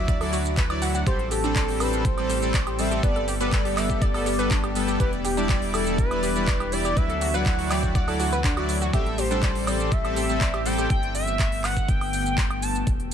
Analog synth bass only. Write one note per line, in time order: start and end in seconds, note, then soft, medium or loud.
0.00 1.04 D2 medium
1.07 3.01 A1 medium
3.03 4.98 G1 medium
5.00 6.94 E1 medium
6.97 8.91 D2 medium
8.93 10.88 A1 medium
10.90 12.85 G1 medium
12.87 13.14 E1 medium